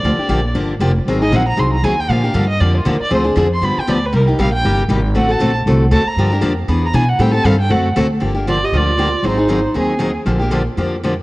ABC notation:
X:1
M:4/4
L:1/8
Q:"Swing" 1/4=235
K:Gm
V:1 name="Violin"
d4 z4 | z e _g b c' b _a =g | f3 e d F B d | c z2 c' =b g d =B |
B z f g2 z3 | ^f a2 z3 a b- | b z4 b ^g ^f | g a f g ^f2 z2 |
z2 d e d4 | c4 _A3 z | z8 |]
V:2 name="Clarinet"
z8 | z8 | z8 | z8 |
z8 | z8 | z8 | z8 |
z2 F G F4 | E4 C3 z | z8 |]
V:3 name="Steel-string acoustic guitar"
[D,F,B,DG] [B,DG] [D,F,B,DG] z [D,F,B,DG] z [D,F,B,DG] z | [E,_G,CE_A] [CEA] [E,G,CEA] z [E,G,CEA] z [E,G,CEA] z | [D,F,B,DG] [B,DG] [D,F,B,DG] z [D,F,B,DG] z [D,F,B,DG] z | [D,F,CD_A] [CDA] [D,F,CDA] z [D,F,=B,DG] z [D,F,B,DG] z |
[C,G,B,EG] [B,EG] [C,G,B,EG] z [C,G,B,EG] z [C,G,B,EG] z | [D,A,C^FA] [CFA] [D,A,CFA] z [D,A,CFA] z [D,A,CFA] z | [D,F,B,DG] [B,DG] [D,F,B,DG] z [=E,=B,D^G] z [E,B,DG] z | [E,G,CGA] [CGA] [E,G,CGA] z [D,A,C^FA] z [D,A,CFA] z |
[D,F,B,DG] [B,DG] [D,F,B,DG] z [D,F,B,DG] z [D,F,B,DG] z | [E,_G,CE_A] [CEA] [E,G,CEA] z [E,G,CEA] z [E,G,CEA] z | [D,F,B,DG] [B,DG] [D,F,B,DG] z [D,F,B,DG] z [D,F,B,DG] z |]
V:4 name="Upright bass" clef=bass
D,, z B,,,2 G,,,2 F,,,2 | _A,,,2 B,,,2 C,,2 E,,2 | B,,2 G,,2 F,,2 E,, z | D,,2 F,,2 G,, z D,,2 |
C,,2 B,,,2 G,,,2 _A,,,2 | A,,,2 B,,,2 C,,2 D,, z | G,,2 F,,2 =E,,2 =B,,2 | A,,2 G,,2 ^F,,2 D,,2 |
G,,,4 D,,4 | _A,,,4 E,,4 | B,,,4 F,,4 |]